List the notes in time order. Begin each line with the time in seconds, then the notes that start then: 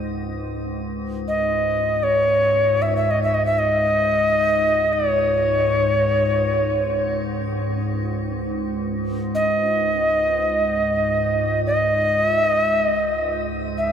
Already playing: C#2 G#2
1.28 D#5
2.03 C#5
2.82 E5
2.97 E5
3.11 D#5
3.23 E5
3.34 D#5
3.46 E5
3.59 D#5
4.93 C#5
9.35 D#5
11.67 D#5
12.32 E5
12.45 D#5
12.67 E5
12.80 D#5
13.78 E5